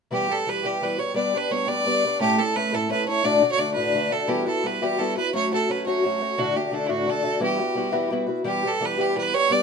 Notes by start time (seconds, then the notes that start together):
0.11 E3 G3 B3 G4
0.29 G3 B3 G4 A4
0.46 E3 G3 B3 G4 B4
0.63 E3 G3 B3 G4
0.81 E3 G3 B3 G4 B4
0.98 G3 B3 G4 C#5
1.14 G3 B3 D4 G4 D5
1.33 B3 D4 G4 B4
1.51 G3 B3 D4 G4 C#5
1.67 G3 B3 D4 G4 D5
1.85 G3 B3 D4 G4
2.04 B3 D4 G4
2.20 A2 A3 C#4 E4 G4 A4
2.38 C#4 E4 A4
2.56 A3 C#4 E4 A4 B4
2.73 A2 A3 C#4 E4 A4
2.89 A3 C#4 E4 A4 B4
3.06 C#4 E4 A4 C#5
3.23 D2 A2 D3 A3 D4 F#4 D5
3.42 D3 A3 D4 F#4
3.51 C#5
3.58 D3 A3 D4 F#4 D5
3.73 D2 A2 D3 A3 D4 F#4 B4
3.94 D3 A3 D4 F#4
4.11 D3 A3 D4 F#4 A4
4.27 E3 G3 B3 E4 F#4 G4
4.46 B3 E4 F#4 A4
4.63 G3 B3 E4 F#4 B4
4.82 E3 G3 B3 E4 F#4 G4
4.99 G3 B3 E4 F#4 A4
5.16 B3 E4 F#4 B4
5.33 F#3 A3 C#4 F#4 C#5
5.52 A3 C#4 F#4 A4
5.69 F#3 A3 C#4 F#4 B4
5.86 F#3 A3 C#4 F#4 C#5
6.04 F#3 A3 C#4 F#4
6.20 A3 C#4 F#4
6.38 D2 A2 D3 A3 D4 F#4
6.56 D3 A3 D4 F#4 G4
6.71 D3 A3 D4 F#4 A4
6.86 D2 A2 D3 A3 D4 E4 F#4
7.06 D3 A3 D4 F#4 A4
7.23 D3 A3 D4 F#4
7.40 E3 G3 B3 E4 F#4 G4
7.58 B3 E4 F#4
7.75 G3 B3 E4 F#4
7.92 E3 G3 B3 E4 F#4
8.10 G3 B3 E4 F#4
8.27 B3 E4 F#4
8.44 E3 G3 B3 G4
8.63 G3 B3 G4
8.67 A4
8.80 E3 G3 B3 G4
8.85 B4
8.97 E3 G3 B3 G4
9.16 E3 G3 B3 G4 B4
9.34 G3 B3 G4 C#5
9.50 G3 B3 D4 G4 D5